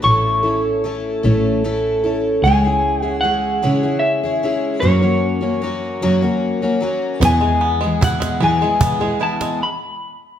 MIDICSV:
0, 0, Header, 1, 6, 480
1, 0, Start_track
1, 0, Tempo, 796813
1, 28, Time_signature, 6, 3, 24, 8
1, 6260, End_track
2, 0, Start_track
2, 0, Title_t, "Clean electric guitar"
2, 0, Program_c, 0, 27
2, 24, Note_on_c, 0, 85, 89
2, 1203, Note_off_c, 0, 85, 0
2, 1468, Note_on_c, 0, 80, 93
2, 1830, Note_off_c, 0, 80, 0
2, 1830, Note_on_c, 0, 78, 93
2, 1929, Note_off_c, 0, 78, 0
2, 1932, Note_on_c, 0, 78, 85
2, 2406, Note_on_c, 0, 76, 81
2, 2435, Note_off_c, 0, 78, 0
2, 2874, Note_off_c, 0, 76, 0
2, 2893, Note_on_c, 0, 73, 72
2, 4076, Note_off_c, 0, 73, 0
2, 4367, Note_on_c, 0, 80, 85
2, 4843, Note_off_c, 0, 80, 0
2, 4845, Note_on_c, 0, 78, 71
2, 5060, Note_off_c, 0, 78, 0
2, 5084, Note_on_c, 0, 80, 77
2, 5557, Note_off_c, 0, 80, 0
2, 5559, Note_on_c, 0, 81, 84
2, 5799, Note_off_c, 0, 81, 0
2, 5801, Note_on_c, 0, 83, 90
2, 6260, Note_off_c, 0, 83, 0
2, 6260, End_track
3, 0, Start_track
3, 0, Title_t, "Twelve-string acoustic guitar"
3, 0, Program_c, 1, 25
3, 12, Note_on_c, 1, 45, 61
3, 12, Note_on_c, 1, 57, 57
3, 16, Note_on_c, 1, 61, 65
3, 17, Note_on_c, 1, 64, 62
3, 17, Note_on_c, 1, 69, 71
3, 250, Note_off_c, 1, 69, 0
3, 258, Note_off_c, 1, 64, 0
3, 258, Note_on_c, 1, 69, 45
3, 260, Note_off_c, 1, 45, 0
3, 260, Note_off_c, 1, 57, 0
3, 262, Note_off_c, 1, 61, 0
3, 265, Note_on_c, 1, 64, 41
3, 269, Note_on_c, 1, 61, 36
3, 502, Note_off_c, 1, 61, 0
3, 503, Note_off_c, 1, 69, 0
3, 504, Note_on_c, 1, 57, 53
3, 507, Note_off_c, 1, 64, 0
3, 509, Note_on_c, 1, 61, 52
3, 514, Note_on_c, 1, 64, 53
3, 518, Note_on_c, 1, 69, 55
3, 735, Note_off_c, 1, 69, 0
3, 741, Note_off_c, 1, 64, 0
3, 742, Note_on_c, 1, 69, 63
3, 743, Note_off_c, 1, 61, 0
3, 747, Note_off_c, 1, 57, 0
3, 749, Note_on_c, 1, 64, 55
3, 750, Note_on_c, 1, 61, 53
3, 754, Note_on_c, 1, 57, 57
3, 756, Note_on_c, 1, 45, 50
3, 982, Note_off_c, 1, 57, 0
3, 984, Note_off_c, 1, 61, 0
3, 985, Note_off_c, 1, 69, 0
3, 989, Note_off_c, 1, 64, 0
3, 989, Note_on_c, 1, 57, 60
3, 991, Note_on_c, 1, 61, 59
3, 993, Note_off_c, 1, 45, 0
3, 995, Note_on_c, 1, 64, 63
3, 999, Note_on_c, 1, 69, 61
3, 1219, Note_off_c, 1, 69, 0
3, 1224, Note_off_c, 1, 64, 0
3, 1226, Note_on_c, 1, 69, 48
3, 1229, Note_off_c, 1, 57, 0
3, 1230, Note_off_c, 1, 61, 0
3, 1231, Note_on_c, 1, 64, 41
3, 1240, Note_on_c, 1, 61, 39
3, 1468, Note_off_c, 1, 69, 0
3, 1470, Note_off_c, 1, 64, 0
3, 1475, Note_off_c, 1, 61, 0
3, 1476, Note_on_c, 1, 49, 63
3, 1479, Note_on_c, 1, 56, 69
3, 1481, Note_on_c, 1, 61, 74
3, 1486, Note_on_c, 1, 64, 67
3, 1489, Note_on_c, 1, 68, 70
3, 1586, Note_off_c, 1, 68, 0
3, 1593, Note_off_c, 1, 49, 0
3, 1593, Note_on_c, 1, 68, 44
3, 1594, Note_off_c, 1, 56, 0
3, 1594, Note_off_c, 1, 64, 0
3, 1595, Note_off_c, 1, 61, 0
3, 1601, Note_on_c, 1, 64, 41
3, 1607, Note_on_c, 1, 61, 37
3, 1814, Note_off_c, 1, 68, 0
3, 1820, Note_off_c, 1, 64, 0
3, 1821, Note_on_c, 1, 68, 43
3, 1827, Note_on_c, 1, 64, 41
3, 1828, Note_off_c, 1, 61, 0
3, 1835, Note_on_c, 1, 61, 35
3, 1944, Note_off_c, 1, 64, 0
3, 1945, Note_off_c, 1, 68, 0
3, 1946, Note_on_c, 1, 56, 51
3, 1947, Note_off_c, 1, 61, 0
3, 1951, Note_on_c, 1, 64, 56
3, 1954, Note_on_c, 1, 61, 61
3, 1957, Note_on_c, 1, 68, 58
3, 2179, Note_off_c, 1, 56, 0
3, 2181, Note_off_c, 1, 64, 0
3, 2182, Note_off_c, 1, 61, 0
3, 2183, Note_on_c, 1, 49, 60
3, 2185, Note_off_c, 1, 68, 0
3, 2186, Note_on_c, 1, 56, 70
3, 2189, Note_on_c, 1, 61, 66
3, 2189, Note_on_c, 1, 64, 74
3, 2192, Note_on_c, 1, 68, 74
3, 2301, Note_off_c, 1, 68, 0
3, 2306, Note_off_c, 1, 49, 0
3, 2308, Note_off_c, 1, 56, 0
3, 2308, Note_on_c, 1, 68, 48
3, 2309, Note_off_c, 1, 61, 0
3, 2309, Note_off_c, 1, 64, 0
3, 2316, Note_on_c, 1, 64, 43
3, 2320, Note_on_c, 1, 61, 37
3, 2544, Note_off_c, 1, 68, 0
3, 2551, Note_on_c, 1, 68, 48
3, 2552, Note_off_c, 1, 64, 0
3, 2555, Note_off_c, 1, 61, 0
3, 2559, Note_on_c, 1, 64, 46
3, 2565, Note_on_c, 1, 61, 40
3, 2665, Note_off_c, 1, 61, 0
3, 2668, Note_on_c, 1, 56, 52
3, 2670, Note_off_c, 1, 68, 0
3, 2671, Note_off_c, 1, 64, 0
3, 2672, Note_on_c, 1, 61, 52
3, 2678, Note_on_c, 1, 64, 57
3, 2683, Note_on_c, 1, 68, 57
3, 2902, Note_off_c, 1, 61, 0
3, 2902, Note_on_c, 1, 42, 65
3, 2902, Note_on_c, 1, 49, 67
3, 2904, Note_off_c, 1, 56, 0
3, 2907, Note_off_c, 1, 64, 0
3, 2907, Note_on_c, 1, 54, 69
3, 2909, Note_off_c, 1, 68, 0
3, 2909, Note_on_c, 1, 58, 66
3, 2909, Note_on_c, 1, 61, 73
3, 2912, Note_on_c, 1, 66, 76
3, 3018, Note_off_c, 1, 66, 0
3, 3022, Note_off_c, 1, 61, 0
3, 3024, Note_off_c, 1, 58, 0
3, 3025, Note_off_c, 1, 42, 0
3, 3025, Note_on_c, 1, 66, 46
3, 3026, Note_off_c, 1, 49, 0
3, 3028, Note_off_c, 1, 54, 0
3, 3029, Note_on_c, 1, 61, 42
3, 3031, Note_on_c, 1, 58, 41
3, 3036, Note_on_c, 1, 54, 37
3, 3250, Note_off_c, 1, 66, 0
3, 3257, Note_on_c, 1, 66, 42
3, 3259, Note_off_c, 1, 61, 0
3, 3263, Note_off_c, 1, 58, 0
3, 3265, Note_off_c, 1, 54, 0
3, 3266, Note_on_c, 1, 61, 42
3, 3270, Note_on_c, 1, 58, 38
3, 3273, Note_on_c, 1, 54, 37
3, 3376, Note_off_c, 1, 54, 0
3, 3383, Note_off_c, 1, 66, 0
3, 3383, Note_on_c, 1, 54, 53
3, 3385, Note_off_c, 1, 58, 0
3, 3388, Note_off_c, 1, 61, 0
3, 3392, Note_on_c, 1, 58, 58
3, 3396, Note_on_c, 1, 61, 58
3, 3398, Note_on_c, 1, 66, 60
3, 3622, Note_off_c, 1, 54, 0
3, 3625, Note_off_c, 1, 58, 0
3, 3625, Note_off_c, 1, 61, 0
3, 3625, Note_off_c, 1, 66, 0
3, 3628, Note_on_c, 1, 49, 79
3, 3629, Note_on_c, 1, 42, 78
3, 3629, Note_on_c, 1, 54, 79
3, 3632, Note_on_c, 1, 61, 81
3, 3632, Note_on_c, 1, 66, 85
3, 3633, Note_on_c, 1, 58, 76
3, 3741, Note_off_c, 1, 66, 0
3, 3746, Note_off_c, 1, 61, 0
3, 3748, Note_off_c, 1, 49, 0
3, 3748, Note_on_c, 1, 66, 57
3, 3749, Note_off_c, 1, 42, 0
3, 3749, Note_off_c, 1, 54, 0
3, 3749, Note_off_c, 1, 58, 0
3, 3754, Note_on_c, 1, 61, 47
3, 3756, Note_on_c, 1, 58, 46
3, 3761, Note_on_c, 1, 54, 46
3, 3981, Note_off_c, 1, 66, 0
3, 3986, Note_off_c, 1, 61, 0
3, 3988, Note_on_c, 1, 66, 53
3, 3992, Note_off_c, 1, 54, 0
3, 3992, Note_off_c, 1, 58, 0
3, 3993, Note_on_c, 1, 61, 53
3, 3999, Note_on_c, 1, 54, 44
3, 4002, Note_on_c, 1, 58, 50
3, 4092, Note_off_c, 1, 54, 0
3, 4099, Note_on_c, 1, 54, 56
3, 4100, Note_off_c, 1, 58, 0
3, 4101, Note_off_c, 1, 61, 0
3, 4107, Note_on_c, 1, 58, 61
3, 4108, Note_off_c, 1, 66, 0
3, 4109, Note_on_c, 1, 61, 66
3, 4115, Note_on_c, 1, 66, 66
3, 4340, Note_off_c, 1, 54, 0
3, 4341, Note_on_c, 1, 40, 62
3, 4342, Note_on_c, 1, 52, 67
3, 4344, Note_off_c, 1, 61, 0
3, 4345, Note_off_c, 1, 58, 0
3, 4345, Note_on_c, 1, 47, 68
3, 4346, Note_off_c, 1, 66, 0
3, 4347, Note_on_c, 1, 56, 76
3, 4347, Note_on_c, 1, 59, 72
3, 4348, Note_on_c, 1, 68, 73
3, 4461, Note_off_c, 1, 68, 0
3, 4462, Note_off_c, 1, 59, 0
3, 4465, Note_off_c, 1, 40, 0
3, 4465, Note_off_c, 1, 52, 0
3, 4466, Note_off_c, 1, 47, 0
3, 4468, Note_off_c, 1, 56, 0
3, 4468, Note_on_c, 1, 68, 47
3, 4470, Note_on_c, 1, 59, 42
3, 4476, Note_on_c, 1, 56, 40
3, 4480, Note_on_c, 1, 52, 42
3, 4704, Note_off_c, 1, 68, 0
3, 4709, Note_off_c, 1, 59, 0
3, 4711, Note_on_c, 1, 68, 47
3, 4712, Note_off_c, 1, 56, 0
3, 4714, Note_off_c, 1, 52, 0
3, 4718, Note_on_c, 1, 59, 44
3, 4722, Note_on_c, 1, 56, 41
3, 4727, Note_on_c, 1, 52, 39
3, 4818, Note_off_c, 1, 52, 0
3, 4824, Note_off_c, 1, 56, 0
3, 4826, Note_on_c, 1, 52, 54
3, 4829, Note_off_c, 1, 68, 0
3, 4830, Note_off_c, 1, 59, 0
3, 4831, Note_on_c, 1, 56, 61
3, 4837, Note_on_c, 1, 59, 62
3, 4844, Note_on_c, 1, 68, 59
3, 5066, Note_off_c, 1, 52, 0
3, 5068, Note_on_c, 1, 40, 63
3, 5069, Note_off_c, 1, 56, 0
3, 5070, Note_off_c, 1, 59, 0
3, 5070, Note_off_c, 1, 68, 0
3, 5071, Note_on_c, 1, 47, 67
3, 5073, Note_on_c, 1, 52, 66
3, 5077, Note_on_c, 1, 59, 81
3, 5077, Note_on_c, 1, 68, 77
3, 5078, Note_on_c, 1, 56, 69
3, 5180, Note_off_c, 1, 68, 0
3, 5187, Note_off_c, 1, 40, 0
3, 5187, Note_on_c, 1, 68, 49
3, 5189, Note_off_c, 1, 47, 0
3, 5190, Note_off_c, 1, 52, 0
3, 5192, Note_off_c, 1, 59, 0
3, 5193, Note_off_c, 1, 56, 0
3, 5198, Note_on_c, 1, 59, 49
3, 5203, Note_on_c, 1, 52, 44
3, 5203, Note_on_c, 1, 56, 42
3, 5414, Note_off_c, 1, 68, 0
3, 5420, Note_off_c, 1, 59, 0
3, 5422, Note_on_c, 1, 68, 50
3, 5425, Note_off_c, 1, 56, 0
3, 5427, Note_off_c, 1, 52, 0
3, 5427, Note_on_c, 1, 59, 52
3, 5432, Note_on_c, 1, 56, 47
3, 5434, Note_on_c, 1, 52, 44
3, 5532, Note_off_c, 1, 52, 0
3, 5534, Note_off_c, 1, 56, 0
3, 5539, Note_on_c, 1, 52, 52
3, 5541, Note_on_c, 1, 56, 56
3, 5542, Note_off_c, 1, 59, 0
3, 5544, Note_off_c, 1, 68, 0
3, 5549, Note_on_c, 1, 59, 56
3, 5783, Note_off_c, 1, 52, 0
3, 5784, Note_off_c, 1, 56, 0
3, 5788, Note_off_c, 1, 59, 0
3, 6260, End_track
4, 0, Start_track
4, 0, Title_t, "Five-string banjo"
4, 0, Program_c, 2, 105
4, 4345, Note_on_c, 2, 52, 78
4, 4462, Note_on_c, 2, 56, 51
4, 4584, Note_on_c, 2, 59, 58
4, 4696, Note_off_c, 2, 56, 0
4, 4703, Note_on_c, 2, 56, 58
4, 4827, Note_on_c, 2, 64, 62
4, 4934, Note_off_c, 2, 56, 0
4, 4941, Note_on_c, 2, 56, 56
4, 5056, Note_off_c, 2, 52, 0
4, 5063, Note_on_c, 2, 52, 72
4, 5184, Note_off_c, 2, 56, 0
4, 5192, Note_on_c, 2, 56, 54
4, 5302, Note_off_c, 2, 59, 0
4, 5309, Note_on_c, 2, 59, 55
4, 5420, Note_off_c, 2, 56, 0
4, 5427, Note_on_c, 2, 56, 60
4, 5539, Note_off_c, 2, 64, 0
4, 5546, Note_on_c, 2, 64, 61
4, 5663, Note_off_c, 2, 56, 0
4, 5670, Note_on_c, 2, 56, 52
4, 5832, Note_off_c, 2, 52, 0
4, 5834, Note_off_c, 2, 64, 0
4, 5835, Note_off_c, 2, 59, 0
4, 5836, Note_off_c, 2, 56, 0
4, 6260, End_track
5, 0, Start_track
5, 0, Title_t, "Double bass"
5, 0, Program_c, 3, 43
5, 25, Note_on_c, 3, 33, 73
5, 723, Note_off_c, 3, 33, 0
5, 747, Note_on_c, 3, 33, 86
5, 1444, Note_off_c, 3, 33, 0
5, 1462, Note_on_c, 3, 37, 92
5, 2162, Note_off_c, 3, 37, 0
5, 2196, Note_on_c, 3, 49, 78
5, 2888, Note_off_c, 3, 49, 0
5, 2907, Note_on_c, 3, 42, 91
5, 3604, Note_off_c, 3, 42, 0
5, 3626, Note_on_c, 3, 54, 78
5, 4323, Note_off_c, 3, 54, 0
5, 4341, Note_on_c, 3, 40, 92
5, 5039, Note_off_c, 3, 40, 0
5, 5063, Note_on_c, 3, 52, 88
5, 5760, Note_off_c, 3, 52, 0
5, 6260, End_track
6, 0, Start_track
6, 0, Title_t, "Cajon"
6, 4353, Note_on_c, 9, 36, 79
6, 4353, Note_on_c, 9, 38, 28
6, 4413, Note_off_c, 9, 36, 0
6, 4413, Note_off_c, 9, 38, 0
6, 4713, Note_on_c, 9, 38, 26
6, 4774, Note_off_c, 9, 38, 0
6, 4834, Note_on_c, 9, 36, 79
6, 4894, Note_off_c, 9, 36, 0
6, 4951, Note_on_c, 9, 38, 66
6, 5011, Note_off_c, 9, 38, 0
6, 5306, Note_on_c, 9, 36, 83
6, 5366, Note_off_c, 9, 36, 0
6, 5668, Note_on_c, 9, 38, 64
6, 5728, Note_off_c, 9, 38, 0
6, 6260, End_track
0, 0, End_of_file